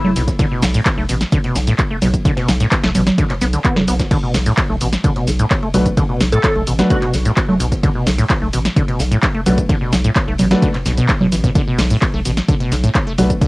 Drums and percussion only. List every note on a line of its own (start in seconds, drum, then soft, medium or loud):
0.04 snare soft
0.04 low conga medium
0.16 snare soft
0.16 open hi-hat loud
0.16 ride medium
0.16 shaker medium
0.27 kick medium
0.27 snare medium
0.27 closed hi-hat medium
0.27 shaker soft
0.39 kick loud
0.39 closed hi-hat medium
0.39 ride medium
0.39 shaker soft
0.62 snare medium
0.62 open hi-hat loud
0.62 open hi-hat medium
0.62 shaker medium
0.74 closed hi-hat medium
0.74 shaker soft
0.85 kick loud
0.85 snare loud
0.85 clap loud
0.85 closed hi-hat medium
0.85 ride medium
0.85 shaker soft
1.09 open hi-hat loud
1.09 ride medium
1.09 shaker medium
1.21 snare medium
1.21 closed hi-hat medium
1.21 shaker soft
1.32 kick loud
1.32 closed hi-hat medium
1.32 ride medium
1.32 shaker soft
1.44 snare soft
1.44 closed hi-hat soft
1.55 snare soft
1.55 open hi-hat loud
1.55 ride medium
1.55 shaker medium
1.67 snare soft
1.67 closed hi-hat medium
1.67 shaker soft
1.78 kick loud
1.78 clap loud
1.78 closed hi-hat medium
1.78 ride medium
1.78 shaker soft
2.02 snare loud
2.02 open hi-hat loud
2.02 ride medium
2.02 low conga medium
2.02 shaker medium
2.14 kick medium
2.14 closed hi-hat medium
2.14 ride soft
2.14 shaker soft
2.25 kick loud
2.25 snare soft
2.25 closed hi-hat medium
2.25 ride medium
2.25 shaker soft
2.37 snare loud
2.37 closed hi-hat soft
2.37 ride medium
2.48 snare medium
2.48 open hi-hat loud
2.48 ride soft
2.48 shaker medium
2.60 snare soft
2.60 closed hi-hat medium
2.60 ride medium
2.60 shaker soft
2.71 kick loud
2.71 snare loud
2.71 clap loud
2.71 closed hi-hat medium
2.71 ride medium
2.71 shaker soft
2.84 snare medium
2.84 closed hi-hat soft
2.95 open hi-hat loud
2.95 ride medium
2.95 low conga medium
2.95 shaker medium
3.07 snare medium
3.07 closed hi-hat medium
3.07 low conga medium
3.07 shaker soft
3.18 kick loud
3.18 closed hi-hat medium
3.18 ride medium
3.18 shaker soft
3.30 snare medium
3.30 clap soft
3.30 closed hi-hat soft
3.41 snare soft
3.41 open hi-hat loud
3.41 ride medium
3.41 shaker medium
3.53 snare soft
3.53 closed hi-hat medium
3.53 shaker soft
3.64 kick loud
3.64 clap loud
3.64 closed hi-hat medium
3.64 shaker soft
3.76 snare medium
3.76 low conga medium
3.88 snare loud
3.88 open hi-hat loud
3.88 ride medium
3.88 shaker medium
3.99 kick medium
3.99 snare soft
3.99 snare loud
3.99 closed hi-hat medium
3.99 ride medium
3.99 shaker soft
4.11 kick loud
4.11 closed hi-hat medium
4.11 crash medium
4.11 ride medium
4.11 shaker soft
4.34 snare medium
4.34 open hi-hat medium
4.34 open hi-hat loud
4.34 shaker medium
4.46 closed hi-hat medium
4.46 shaker soft
4.57 kick loud
4.57 snare loud
4.57 clap loud
4.57 closed hi-hat medium
4.57 ride medium
4.57 shaker soft
4.81 open hi-hat loud
4.81 ride medium
4.81 shaker medium
4.93 snare medium
4.93 closed hi-hat medium
4.93 shaker soft
5.04 kick loud
5.04 closed hi-hat medium
5.04 ride loud
5.04 shaker soft
5.16 snare medium
5.16 closed hi-hat soft
5.27 snare soft
5.27 open hi-hat loud
5.27 ride medium
5.27 shaker medium
5.39 closed hi-hat medium
5.39 shaker soft
5.50 kick loud
5.50 snare loud
5.50 clap loud
5.50 closed hi-hat medium
5.50 ride medium
5.50 shaker soft
5.63 ride soft
5.74 snare medium
5.74 open hi-hat loud
5.74 ride medium
5.74 low conga medium
5.74 shaker medium
5.86 kick medium
5.86 closed hi-hat medium
5.86 shaker soft
5.97 kick loud
5.97 closed hi-hat medium
5.97 ride medium
5.97 shaker soft
6.21 snare medium
6.21 open hi-hat loud
6.21 ride medium
6.21 shaker medium
6.32 closed hi-hat medium
6.32 shaker soft
6.43 kick loud
6.43 snare loud
6.43 clap loud
6.43 closed hi-hat medium
6.43 ride loud
6.43 shaker soft
6.55 ride soft
6.67 open hi-hat loud
6.67 ride medium
6.67 shaker medium
6.79 snare medium
6.79 closed hi-hat medium
6.79 low conga medium
6.79 shaker soft
6.90 kick loud
6.90 closed hi-hat medium
6.90 ride medium
6.90 shaker soft
7.02 snare medium
7.02 clap soft
7.02 closed hi-hat soft
7.13 snare soft
7.13 open hi-hat loud
7.13 ride medium
7.13 shaker medium
7.25 snare soft
7.25 closed hi-hat medium
7.25 shaker soft
7.37 kick loud
7.37 snare loud
7.37 clap loud
7.37 closed hi-hat medium
7.37 ride medium
7.37 shaker soft
7.48 snare soft
7.48 low conga medium
7.59 snare soft
7.59 open hi-hat loud
7.59 ride medium
7.59 shaker medium
7.72 kick medium
7.72 snare medium
7.72 closed hi-hat medium
7.72 shaker soft
7.83 kick loud
7.83 closed hi-hat medium
7.83 ride loud
7.83 shaker soft
8.06 snare medium
8.06 open hi-hat medium
8.06 open hi-hat loud
8.06 shaker medium
8.18 closed hi-hat medium
8.18 shaker soft
8.30 kick loud
8.30 snare loud
8.30 clap loud
8.30 closed hi-hat medium
8.30 ride medium
8.30 shaker soft
8.53 open hi-hat loud
8.53 ride medium
8.53 shaker medium
8.65 snare medium
8.65 closed hi-hat soft
8.65 shaker soft
8.76 kick loud
8.76 closed hi-hat medium
8.76 ride medium
8.76 shaker soft
8.88 snare medium
8.88 closed hi-hat soft
8.99 snare soft
8.99 open hi-hat loud
8.99 ride medium
8.99 shaker medium
9.12 closed hi-hat medium
9.12 shaker soft
9.22 kick loud
9.22 snare loud
9.22 clap loud
9.22 closed hi-hat medium
9.22 ride medium
9.22 shaker soft
9.34 ride soft
9.46 snare soft
9.46 open hi-hat loud
9.46 ride medium
9.46 low conga medium
9.46 shaker medium
9.58 kick medium
9.58 closed hi-hat medium
9.58 shaker soft
9.69 kick loud
9.69 closed hi-hat medium
9.69 ride medium
9.69 shaker soft
9.93 snare medium
9.93 open hi-hat loud
9.93 ride medium
9.93 shaker medium
10.04 closed hi-hat soft
10.04 shaker soft
10.16 kick loud
10.16 snare loud
10.16 clap loud
10.16 closed hi-hat medium
10.16 ride medium
10.16 shaker soft
10.28 ride soft
10.38 open hi-hat loud
10.38 ride medium
10.38 low conga medium
10.38 shaker medium
10.51 snare medium
10.51 closed hi-hat medium
10.51 low conga loud
10.51 shaker soft
10.62 kick loud
10.62 closed hi-hat medium
10.62 ride medium
10.62 shaker soft
10.74 snare medium
10.74 clap soft
10.74 closed hi-hat soft
10.86 snare soft
10.86 open hi-hat loud
10.86 ride medium
10.86 shaker medium
10.97 snare soft
10.97 closed hi-hat medium
10.97 shaker soft
11.09 kick loud
11.09 snare loud
11.09 clap loud
11.09 closed hi-hat medium
11.09 ride medium
11.09 shaker soft
11.21 snare soft
11.21 low conga loud
11.32 snare soft
11.32 open hi-hat loud
11.32 ride medium
11.32 shaker medium
11.44 kick medium
11.44 snare medium
11.44 closed hi-hat medium
11.44 shaker soft
11.55 kick loud
11.55 closed hi-hat medium
11.55 ride medium
11.55 shaker soft
11.79 snare medium
11.79 open hi-hat medium
11.79 open hi-hat loud
11.79 shaker medium
11.90 closed hi-hat soft
11.90 shaker soft
12.01 kick loud
12.01 snare loud
12.01 clap loud
12.01 closed hi-hat medium
12.01 ride medium
12.01 shaker soft
12.25 open hi-hat loud
12.25 ride medium
12.25 shaker medium
12.37 snare medium
12.37 closed hi-hat medium
12.37 shaker soft
12.48 kick loud
12.48 closed hi-hat medium
12.48 ride medium
12.48 shaker soft
12.60 snare soft
12.60 closed hi-hat soft
12.72 snare soft
12.72 open hi-hat loud
12.72 ride medium
12.72 shaker medium
12.84 closed hi-hat medium
12.84 shaker soft
12.95 kick loud
12.95 snare loud
12.95 clap loud
12.95 closed hi-hat medium
12.95 ride medium
12.95 shaker soft
13.07 ride soft
13.18 snare soft
13.18 open hi-hat loud
13.18 ride medium
13.18 low conga medium
13.18 shaker medium
13.30 kick medium
13.30 closed hi-hat medium
13.30 shaker soft
13.41 kick loud
13.41 closed hi-hat medium
13.41 ride medium
13.41 shaker soft